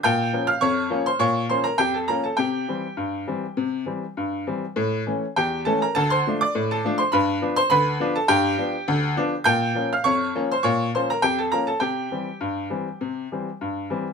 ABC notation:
X:1
M:2/4
L:1/16
Q:1/4=102
K:Bblyd
V:1 name="Upright piano"
[gg']3 [ff'] [_d_d']3 [cc'] | [_d_d']2 [cc'] [Bb] [Gg] [Aa] [Bb] [Aa] | [Gg]8- | [Gg]4 z4 |
z4 [Gg]2 [Aa] [Bb] | [Aa] [cc']2 [dd']2 [Aa]2 [cc'] | [=B=b]3 [cc'] [Bb]3 [Aa] | [Gg]8 |
[gg']3 [ff'] [_d_d']3 [cc'] | [_d_d']2 [cc'] [Bb] [Gg] [Aa] [Bb] [Aa] | [Gg]8- | [Gg]4 z4 |]
V:2 name="Upright piano" clef=bass
B,,2 [F,B,_D]2 F,,2 [F,B,D]2 | B,,2 [F,B,_D]2 F,,2 [F,B,D]2 | C,2 [E,G,C]2 G,,2 [E,G,C]2 | C,2 [E,G,C]2 G,,2 [E,G,C]2 |
A,,2 [E,A,^C]2 E,,2 [E,A,C]2 | D,,2 [F,A,D]2 A,,2 [F,A,D]2 | G,,2 [F,=B,D]2 D,,2 [F,B,D]2 | G,,2 [F,=B,D]2 D,,2 [F,B,D]2 |
B,,2 [F,B,_D]2 F,,2 [F,B,D]2 | B,,2 [F,B,_D]2 F,,2 [F,B,D]2 | C,2 [E,G,C]2 G,,2 [E,G,C]2 | C,2 [E,G,C]2 G,,2 [E,G,C]2 |]